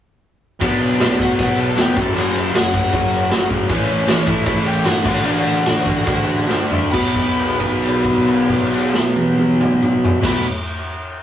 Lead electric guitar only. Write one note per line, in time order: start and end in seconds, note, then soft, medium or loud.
0.62 1.15 D4 medium
0.66 1.18 D5 medium
1.22 1.27 F#4 medium
1.22 1.30 F#5 loud
1.40 1.57 F#4 medium
1.40 1.59 F#5 loud
1.58 1.76 A4 medium
1.58 1.81 A5 loud
1.78 1.95 G4 medium
1.78 2.01 G5 loud
1.99 2.15 A4 medium
1.99 2.20 A5 loud
2.18 2.34 F#4 medium
2.18 2.37 F#5 loud
2.38 2.54 E4 medium
2.38 2.56 E5 loud
2.55 2.72 F#4 medium
2.55 2.75 F#5 medium
2.76 3.47 F#4 medium
2.76 3.47 F#5 loud
3.69 4.22 C#4 medium
3.69 4.23 C#5 medium
4.27 4.45 E4 medium
4.27 4.45 E5 loud
4.46 4.64 E4 medium
4.46 4.66 E5 medium
4.67 4.84 G4 medium
4.67 4.86 G5 medium
4.85 5.22 F#4 medium
4.85 5.24 F#5 medium
5.26 6.67 F#4 medium
5.26 6.67 F#5 medium
6.92 10.14 B5 medium
10.25 10.43 B5 loud